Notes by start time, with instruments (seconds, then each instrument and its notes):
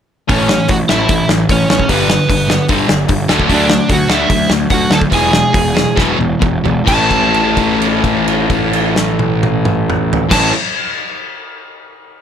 0.29 picked electric bass A1, distorted electric guitar A2 E3 A3, overdriven electric guitar C#4 C#5, kick, open hi-hat
0.49 distorted electric guitar A2 E3, snare
0.68 picked electric bass A1, distorted electric guitar A2 E3, overdriven electric guitar F#4 F#5, kick, open hi-hat
0.89 picked electric bass A1, distorted electric guitar A2 E3 A3, overdriven electric guitar E4 E5, snare
1.09 picked electric bass A1, distorted electric guitar A2 E3, kick, open hi-hat
1.29 picked electric bass A1, distorted electric guitar A2 E3, snare
1.49 picked electric bass A1, distorted electric guitar A2 E3, overdriven electric guitar C#4 C#5, kick, open hi-hat
1.69 picked electric bass A1, distorted electric guitar A2 E3, overdriven electric guitar C#4 C#5, snare
1.80 kick
1.89 picked electric bass G1, distorted electric guitar G2 D3 G3, overdriven electric guitar B3 B4, kick, open hi-hat
2.09 distorted electric guitar G2 D3, snare
2.28 picked electric bass G1, distorted electric guitar G2 D3, kick, open hi-hat
2.48 distorted electric guitar G2 D3, snare
2.69 picked electric bass G1, distorted electric guitar G2 D3 G3, kick, open hi-hat
2.89 picked electric bass G1, distorted electric guitar G2 D3, snare
3.09 picked electric bass G1, distorted electric guitar G2 D3, kick, open hi-hat
3.28 picked electric bass D2, distorted electric guitar D3 F#3 A3 D4, snare
3.40 kick
3.48 picked electric bass D2, distorted electric guitar D3 F#3 A3 D4, overdriven electric guitar D4, kick, open hi-hat
3.54 overdriven electric guitar D5
3.66 distorted electric guitar D3 F#3 A3, snare
3.88 picked electric bass D2, distorted electric guitar D3 F#3 A3, overdriven electric guitar F#4, kick, open hi-hat
3.93 overdriven electric guitar F#5
4.08 picked electric bass D2, distorted electric guitar D3 F#3 A3 D4, snare
4.13 overdriven electric guitar E4 E5
4.28 picked electric bass D2, distorted electric guitar D3 F#3 A3, kick, open hi-hat
4.50 picked electric bass D2, distorted electric guitar D3 F#3 A3, snare
4.70 picked electric bass D2, distorted electric guitar D3 F#3 A3, overdriven electric guitar F#4 F#5, kick, open hi-hat
4.90 picked electric bass D2, distorted electric guitar D3 F#3 A3, overdriven electric guitar A5, snare
4.95 overdriven electric guitar A4
5.02 kick
5.10 picked electric bass E1, distorted electric guitar E2 B2 E3 G#3 B3, kick, open hi-hat
5.14 overdriven electric guitar G#4 G#5
5.31 distorted electric guitar E2 B2 E3 G#3, snare
5.53 picked electric bass E1, distorted electric guitar E2 B2 E3 G#3, kick, open hi-hat
5.74 distorted electric guitar E2 B2 E3 G#3, snare
5.95 picked electric bass E1, distorted electric guitar E2 B2 E3 G#3 B3, kick, snare
6.18 picked electric bass E1, distorted electric guitar E2 B2 E3 G#3, high tom
6.39 picked electric bass E1, distorted electric guitar E2 B2 E3 G#3, kick, mid tom
6.64 picked electric bass E1, distorted electric guitar E2 B2 E3 G#3, floor tom
6.85 picked electric bass A1, distorted electric guitar A2 E3 A3 C#4, overdriven electric guitar A5, kick, crash
6.90 distorted electric guitar E4
7.11 kick, crash
7.34 crash
7.57 kick, crash
7.82 crash
8.04 kick, crash
8.28 crash
8.50 kick, crash
8.73 crash
8.96 snare
9.19 high tom
9.43 high tom
9.65 mid tom
9.90 mid tom
10.13 floor tom
10.30 picked electric bass A1, distorted electric guitar A2 E3 A3 C#4 E4, overdriven electric guitar A5, kick, snare, crash